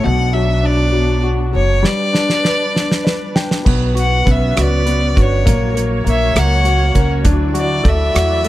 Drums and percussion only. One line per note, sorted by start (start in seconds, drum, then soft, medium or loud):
1.85 snare soft
2.15 snare medium
2.30 snare soft
2.45 snare medium
2.76 snare medium
2.92 snare medium
3.07 snare medium
3.36 snare medium
3.51 snare medium
3.66 kick loud
3.66 crash medium
3.97 closed hi-hat medium
4.27 kick medium
4.27 closed hi-hat soft
4.57 cross-stick medium
4.57 closed hi-hat medium
4.87 closed hi-hat soft
5.17 kick medium
5.17 closed hi-hat soft
5.47 kick loud
5.47 closed hi-hat medium
5.77 closed hi-hat medium
6.07 closed hi-hat soft
6.36 cross-stick medium
6.36 closed hi-hat medium
6.65 closed hi-hat soft
6.95 kick medium
6.95 closed hi-hat soft
7.25 kick loud
7.25 closed hi-hat medium
7.55 closed hi-hat medium
7.85 kick medium
7.85 closed hi-hat soft
8.16 cross-stick medium
8.16 closed hi-hat medium
8.44 closed hi-hat soft